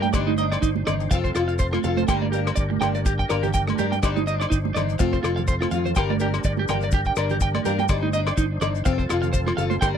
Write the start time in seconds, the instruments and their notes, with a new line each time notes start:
Already playing: fingered electric bass G2, tonewheel organ D4 G4 A#4
0.02 clean electric guitar G5, closed hi-hat, high conga
0.13 fingered electric bass G1, steel-string acoustic guitar G3 D4 D#4, tonewheel organ D4 D#4 C5, clean electric guitar D5, kick, cross-stick, closed hi-hat, low agogo, maracas
0.27 clean electric guitar D#4, high conga
0.38 steel-string acoustic guitar D4 D#4, clean electric guitar D#5, closed hi-hat, maracas
0.52 clean electric guitar D5, cross-stick, closed hi-hat, low agogo
0.62 fingered electric bass G1, clean electric guitar D#4, kick, closed hi-hat, maracas
0.76 high conga
0.86 fingered electric bass G1, steel-string acoustic guitar D#4, clean electric guitar D5, muted steel-string acoustic guitar stroke, cross-stick, closed hi-hat, low conga, low agogo, maracas
1.00 closed hi-hat, maracas
1.11 fingered electric bass F1, tonewheel organ C4 F4 A4, steel-string acoustic guitar C4 F4 A4, clean electric guitar F5, kick, closed hi-hat, maracas
1.24 clean electric guitar C5, kick, maracas
1.35 fingered electric bass F1, clean electric guitar F4, steel-string acoustic guitar A4, cross-stick, closed hi-hat, low agogo, maracas
1.39 steel-string acoustic guitar F4
1.48 clean electric guitar F5, closed hi-hat, maracas
1.59 clean electric guitar C5, kick, closed hi-hat, maracas
1.73 clean electric guitar F4, cross-stick, high conga, low agogo
1.84 fingered electric bass F1, steel-string acoustic guitar F4 A4, clean electric guitar F5, closed hi-hat, low conga, maracas
1.97 clean electric guitar C5, closed hi-hat, high conga
2.07 fingered electric bass G1, steel-string acoustic guitar G3 A#3 D4 A#4, tonewheel organ D4 G4 A#4, clean electric guitar G5, kick, cross-stick, closed hi-hat, low agogo, maracas
2.22 clean electric guitar D5, high conga
2.32 steel-string acoustic guitar A#3 D4 A#4, clean electric guitar G4, closed hi-hat, maracas
2.47 cross-stick, closed hi-hat, low agogo
2.56 fingered electric bass G1, clean electric guitar D5, kick, closed hi-hat, maracas
2.70 muted clean electric guitar stroke, high conga
2.81 fingered electric bass G1, steel-string acoustic guitar A#3 D4 A#4, clean electric guitar G5, cross-stick, closed hi-hat, low conga, low agogo, maracas
2.95 clean electric guitar D5, closed hi-hat, maracas
3.06 clean electric guitar G4, kick, closed hi-hat, maracas
3.19 clean electric guitar G5, kick, maracas
3.29 fingered electric bass G1, steel-string acoustic guitar A#3 D4 A#4, clean electric guitar D5, cross-stick, closed hi-hat, low agogo, maracas
3.43 clean electric guitar G4, closed hi-hat, low conga, maracas
3.54 clean electric guitar G5, kick, closed hi-hat, maracas
3.67 muted clean electric guitar stroke, cross-stick, high conga, low agogo
3.78 fingered electric bass G2, steel-string acoustic guitar D4 A#4, clean electric guitar G4, muted steel-string acoustic guitar stroke, closed hi-hat, low conga, maracas
3.92 clean electric guitar G5, closed hi-hat, high conga
4.02 fingered electric bass G1, steel-string acoustic guitar G3 D4 D#4, tonewheel organ D#4 C5, clean electric guitar D5, kick, cross-stick, closed hi-hat, low agogo, maracas
4.16 clean electric guitar D#4, high conga, maracas
4.26 steel-string acoustic guitar D4 D#4, clean electric guitar D#5, closed hi-hat, maracas
4.40 clean electric guitar D5, cross-stick, closed hi-hat, low agogo, maracas
4.50 fingered electric bass G1, clean electric guitar D#4, kick, closed hi-hat, maracas
4.65 high conga
4.74 fingered electric bass G1, steel-string acoustic guitar D4 D#4, clean electric guitar D5, cross-stick, closed hi-hat, low conga, low agogo, maracas
4.89 closed hi-hat, maracas
4.99 fingered electric bass F1, steel-string acoustic guitar C4 F4 A4, tonewheel organ C4 F4 A4, muted clean electric guitar stroke, kick, closed hi-hat, high conga, maracas
5.13 clean electric guitar C5, kick, maracas
5.23 fingered electric bass F1, clean electric guitar F4, steel-string acoustic guitar F4 A4, cross-stick, closed hi-hat, low agogo, maracas
5.36 clean electric guitar F5, closed hi-hat, low conga
5.48 clean electric guitar C5, kick, closed hi-hat, maracas
5.61 clean electric guitar F4, cross-stick, high conga, low agogo, maracas
5.71 fingered electric bass F2, steel-string acoustic guitar F4, clean electric guitar F5, muted steel-string acoustic guitar stroke, closed hi-hat, low conga, maracas
5.85 clean electric guitar C5, closed hi-hat, low conga, maracas
5.95 fingered electric bass G1, steel-string acoustic guitar G3 A#3 D4 A#4, tonewheel organ D4 G4 A#4, clean electric guitar G5, kick, cross-stick, closed hi-hat, low agogo, maracas
6.10 clean electric guitar D5, high conga
6.20 steel-string acoustic guitar D4 A#4, clean electric guitar G4, closed hi-hat, maracas
6.34 cross-stick, closed hi-hat, low agogo
6.44 fingered electric bass G1, clean electric guitar D5, kick, closed hi-hat, maracas
6.57 clean electric guitar G4, high conga
6.68 fingered electric bass G1, steel-string acoustic guitar A#3 D4 A#4, clean electric guitar G5, cross-stick, closed hi-hat, low conga, low agogo, maracas
6.81 clean electric guitar D5, closed hi-hat, maracas
6.91 clean electric guitar G4, kick, closed hi-hat, maracas
7.05 clean electric guitar G5, kick, maracas
7.16 fingered electric bass G1, steel-string acoustic guitar D4 A#4, clean electric guitar D5, cross-stick, closed hi-hat, low agogo, maracas
7.30 clean electric guitar G4, closed hi-hat, low conga, maracas
7.40 clean electric guitar G5, kick, closed hi-hat, maracas
7.54 clean electric guitar D5, cross-stick, high conga, low agogo
7.65 fingered electric bass G2, steel-string acoustic guitar A#3 D4 A#4, clean electric guitar G4, closed hi-hat, low conga, maracas
7.79 clean electric guitar G5, closed hi-hat, high conga
7.88 fingered electric bass G1, steel-string acoustic guitar G3 D#4, tonewheel organ D4 D#4 C5, clean electric guitar D5, muted steel-string acoustic guitar stroke, kick, cross-stick, closed hi-hat, low agogo, maracas
8.03 clean electric guitar D#4, high conga
8.13 steel-string acoustic guitar D4 D#4, clean electric guitar D#5, closed hi-hat, maracas
8.27 clean electric guitar D5, cross-stick, closed hi-hat, low agogo
8.37 fingered electric bass G1, clean electric guitar D#4, kick, closed hi-hat, maracas
8.61 fingered electric bass G1, steel-string acoustic guitar D4 D#4, clean electric guitar D5, cross-stick, closed hi-hat, low conga, low agogo, maracas
8.75 closed hi-hat, maracas
8.85 fingered electric bass F1, tonewheel organ C4 F4 A4, steel-string acoustic guitar C4 A4, clean electric guitar F5, muted steel-string acoustic guitar stroke, kick, closed hi-hat, maracas
8.98 clean electric guitar C5, kick, maracas
9.09 fingered electric bass F1, clean electric guitar F4, steel-string acoustic guitar F4 A4, cross-stick, closed hi-hat, low agogo, maracas
9.22 clean electric guitar F5, closed hi-hat, low conga, maracas
9.33 clean electric guitar C5, kick, closed hi-hat, maracas
9.46 clean electric guitar F4, cross-stick, high conga, low agogo
9.57 fingered electric bass F#1, steel-string acoustic guitar F4 A4, clean electric guitar F5, closed hi-hat, low conga, maracas
9.70 clean electric guitar C5, closed hi-hat, high conga
9.81 fingered electric bass G1, steel-string acoustic guitar G3 A#3 A#4, tonewheel organ D4 G4 A#4, clean electric guitar G5, muted steel-string acoustic guitar stroke, kick, cross-stick, closed hi-hat, low agogo, maracas
9.95 clean electric guitar D5